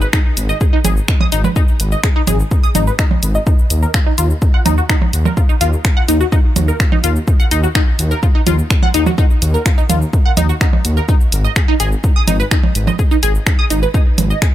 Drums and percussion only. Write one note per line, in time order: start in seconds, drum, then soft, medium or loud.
0.01 shaker soft
0.13 finger snap loud
0.13 kick loud
0.13 shaker medium
0.37 closed hi-hat medium
0.37 shaker medium
0.49 shaker soft
0.61 kick loud
0.61 shaker soft
0.85 closed hi-hat loud
0.85 percussion blips medium
0.85 shaker medium
0.97 shaker soft
1.08 finger snap loud
1.08 kick loud
1.08 shaker soft
1.20 percussion blips medium
1.32 closed hi-hat medium
1.32 shaker medium
1.44 percussion blips loud
1.44 shaker soft
1.56 kick loud
1.56 shaker soft
1.68 shaker soft
1.80 closed hi-hat loud
1.80 shaker medium
1.92 shaker soft
2.04 finger snap loud
2.04 kick loud
2.04 shaker soft
2.27 closed hi-hat medium
2.27 percussion blips medium
2.27 shaker medium
2.40 shaker soft
2.51 kick loud
2.51 shaker soft
2.63 shaker soft
2.75 closed hi-hat loud
2.75 percussion blips medium
2.75 shaker medium
2.87 shaker soft
2.99 finger snap loud
2.99 kick loud
2.99 shaker soft
3.11 percussion blips medium
3.23 closed hi-hat medium
3.23 shaker medium
3.35 shaker soft
3.47 kick loud
3.47 shaker soft
3.59 shaker soft
3.70 closed hi-hat loud
3.70 shaker medium
3.83 shaker soft
3.94 finger snap loud
3.94 kick loud
3.94 shaker medium
4.18 closed hi-hat loud
4.18 shaker medium
4.30 shaker soft
4.42 kick loud
4.42 shaker soft
4.66 closed hi-hat loud
4.66 percussion blips medium
4.66 shaker medium
4.78 shaker soft
4.89 finger snap loud
4.89 kick loud
4.89 shaker soft
5.02 percussion blips medium
5.13 closed hi-hat medium
5.13 shaker medium
5.25 percussion blips medium
5.25 shaker soft
5.37 kick loud
5.37 shaker soft
5.49 shaker soft
5.61 closed hi-hat loud
5.61 shaker medium
5.73 shaker soft
5.85 finger snap loud
5.85 kick loud
5.85 shaker soft
6.08 closed hi-hat loud
6.08 shaker medium
6.21 shaker soft
6.32 kick loud
6.32 shaker soft
6.56 closed hi-hat loud
6.56 percussion blips medium
6.56 shaker medium
6.68 shaker soft
6.80 finger snap loud
6.80 kick loud
6.80 shaker soft
6.92 percussion blips medium
7.04 closed hi-hat loud
7.04 shaker medium
7.16 shaker soft
7.28 kick loud
7.28 shaker soft
7.40 shaker soft
7.51 closed hi-hat loud
7.51 shaker medium
7.64 shaker soft
7.75 finger snap loud
7.75 kick loud
7.75 shaker soft
7.99 closed hi-hat loud
7.99 shaker medium
8.11 shaker soft
8.23 kick loud
8.23 shaker soft
8.47 closed hi-hat loud
8.47 percussion blips medium
8.47 shaker medium
8.59 shaker soft
8.70 finger snap loud
8.70 kick loud
8.70 shaker soft
8.83 percussion blips medium
8.94 closed hi-hat loud
8.94 shaker medium
9.06 percussion blips medium
9.06 shaker soft
9.18 kick loud
9.18 shaker soft
9.30 shaker soft
9.42 closed hi-hat loud
9.42 shaker medium
9.54 shaker soft
9.66 finger snap loud
9.66 kick loud
9.66 shaker soft
9.78 shaker soft
9.90 closed hi-hat loud
9.90 percussion blips medium
9.90 shaker medium
10.02 shaker soft
10.13 kick loud
10.13 shaker soft
10.37 closed hi-hat loud
10.37 percussion blips medium
10.37 shaker medium
10.49 shaker soft
10.61 finger snap loud
10.61 kick loud
10.61 shaker soft
10.73 percussion blips medium
10.85 closed hi-hat loud
10.85 shaker medium
10.97 shaker soft
11.09 kick loud
11.09 shaker soft
11.21 shaker soft
11.32 closed hi-hat loud
11.32 shaker medium
11.45 shaker soft
11.56 finger snap loud
11.56 kick loud
11.56 shaker soft
11.80 closed hi-hat loud
11.80 shaker medium
11.92 shaker soft
12.04 kick loud
12.04 shaker soft
12.28 closed hi-hat loud
12.28 percussion blips medium
12.28 shaker medium
12.40 shaker soft
12.51 finger snap loud
12.51 kick loud
12.51 shaker soft
12.64 percussion blips medium
12.75 closed hi-hat medium
12.75 shaker medium
12.87 percussion blips loud
12.87 shaker soft
12.99 kick loud
12.99 shaker soft
13.11 shaker soft
13.23 closed hi-hat loud
13.23 shaker medium
13.35 shaker soft
13.47 finger snap loud
13.47 kick loud
13.47 shaker soft
13.70 closed hi-hat loud
13.70 shaker medium
13.83 shaker soft
13.94 kick loud
13.94 shaker soft
14.18 closed hi-hat loud
14.18 percussion blips medium
14.18 shaker medium
14.30 shaker soft
14.42 finger snap loud
14.42 kick loud
14.42 shaker soft